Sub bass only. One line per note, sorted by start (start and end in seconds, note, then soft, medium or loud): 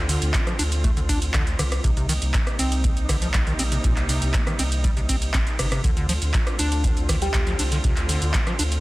0.00 0.18 D2 loud
0.22 0.32 D2 loud
0.59 0.93 D2 loud
0.97 1.30 D2 loud
1.34 1.54 D2 loud
1.59 1.79 C2 medium
1.84 2.18 C2 loud
2.22 2.32 C2 loud
2.59 2.93 C2 loud
2.97 3.30 C2 loud
3.34 3.54 C2 loud
3.59 3.79 A#1 medium
3.84 4.18 C2 loud
4.22 4.32 C2 loud
4.59 4.93 C2 loud
4.97 5.30 C2 loud
5.34 5.44 G1 medium
5.59 5.79 G1 medium
5.84 6.18 D2 loud
6.22 6.32 D2 loud
6.59 6.93 D2 loud
6.97 7.30 D2 loud
7.34 7.54 D2 loud
7.59 7.79 C2 medium
7.84 8.18 D2 loud
8.22 8.32 D2 loud
8.59 8.80 D2 loud